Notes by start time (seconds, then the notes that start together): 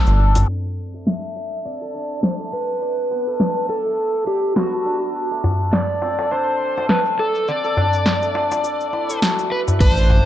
Already playing: A3 C4 A4 D5
0.06 G1 D4, darbuka ka, cabasa
0.20 A4
0.35 C4, open hi-hat, darbuka ka, darbuka dum, cabasa
0.48 D4
0.94 A3
1.07 E5, snare
1.36 D5
1.65 C4 D5
1.81 A4
1.94 D4
2.23 C5, snare
2.40 A3
2.53 B4
2.69 cabasa
2.81 D5, cabasa
3.11 B3
3.27 A4, cabasa
3.40 D4, snare
3.56 cabasa
3.70 A4
3.85 A3, cabasa
3.98 cabasa
4.27 G4 D5
4.44 cabasa
4.56 B3 F#4, snare, cabasa
4.73 A4, cabasa
4.86 D4
5.02 cabasa
5.15 cabasa
5.31 A3, cabasa
5.44 darbuka tek, darbuka dum
5.60 cabasa
5.73 D5, snare, cabasa
5.89 cabasa
6.02 C4, darbuka tek
6.18 A4, darbuka tek, cabasa
6.31 D4 C5, cabasa
6.47 cabasa
6.77 A3, darbuka tek, cabasa
6.89 B4, snare, cabasa
7.06 cabasa
7.19 A4 D5
7.35 cabasa
7.48 C4 D5, cabasa
7.64 A4, cabasa
7.77 D4, darbuka tek, darbuka dum
7.93 darbuka ka, cabasa
8.06 snare, cabasa
8.22 A3, cabasa
8.35 darbuka tek
8.51 darbuka tek, cabasa
8.64 D5, cabasa
8.80 cabasa
8.93 E4, darbuka ka
9.10 A4, cabasa
9.22 F#4, snare, cabasa
9.39 darbuka ka, cabasa
9.52 B4
9.68 E4, darbuka ka, darbuka dum, cabasa
9.80 A1 D4 C5, kick, open hi-hat, crash, cabasa
9.97 cabasa
10.10 darbuka tek, darbuka dum